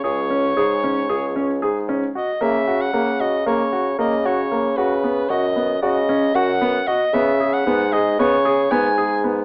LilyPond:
<<
  \new Staff \with { instrumentName = "Soprano saxophone" } { \time 9/8 \key cis \dorian \tempo 4. = 76 cis''2.~ cis''8 r8 dis''8 | e''8. fis''8. dis''8 cis''4 dis''8 cis''4 | b'4 dis''4 dis''4 fis''4 dis''8 | e''8. fis''8. dis''8 cis''4 gis''4 r8 | }
  \new Staff \with { instrumentName = "Grand piano" } { \time 9/8 \key cis \dorian gis'8 cis'8 gis'8 cis'8 gis'8 cis'8 gis'8 cis'8 fis'8 | ais8 fis'8 ais8 fis'8 ais8 fis'8 ais8 fis'8 ais8 | fis'8 b8 fis'8 b8 fis'8 cis'8 fis'8 b8 fis'8 | b8 gis'8 b8 gis'8 b8 gis'8 b8 gis'8 b8 | }
  \new Staff \with { instrumentName = "Bassoon" } { \clef bass \time 9/8 \key cis \dorian cis,4 gis,4 cis,4 gis,4 r8 | cis4 cis4 cis4 cis4. | cis4 fis,4 cis4 fis,4 r8 | cis4 gis,4 cis4 gis,4. | }
>>